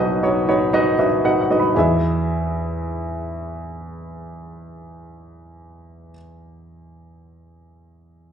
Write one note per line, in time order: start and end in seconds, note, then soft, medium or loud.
0.00 1.71 B1 medium
0.00 1.71 B2 medium
0.00 0.23 D#4 medium
0.00 0.23 F#4 medium
0.00 0.23 B4 medium
0.00 0.74 D#5 medium
0.23 0.46 D#4 medium
0.23 0.46 F#4 medium
0.23 0.46 B4 medium
0.23 0.47 C#5 medium
0.48 0.72 D#4 medium
0.48 0.72 F#4 medium
0.48 0.72 B4 medium
0.48 0.72 C#5 medium
0.73 0.97 D#4 medium
0.73 0.97 F#4 medium
0.73 0.97 B4 medium
0.73 0.97 D#5 medium
0.98 1.22 D#4 medium
0.98 1.23 F#4 medium
0.98 1.23 B4 medium
0.98 1.06 D#5 medium
0.98 1.07 E5 medium
1.07 1.23 D#5 soft
1.25 1.48 D#4 medium
1.25 1.48 F#4 medium
1.25 1.48 B4 medium
1.25 1.40 F#5 medium
1.41 1.57 F#5 medium
1.50 1.74 D#4 medium
1.50 1.74 F#4 medium
1.50 1.74 B4 medium
1.50 1.74 D#5 medium
1.60 1.75 B5 soft
1.74 6.13 E2 medium
1.74 6.11 E4 medium
1.74 6.12 G#4 soft
1.74 6.13 B4 medium
1.79 6.15 E5 medium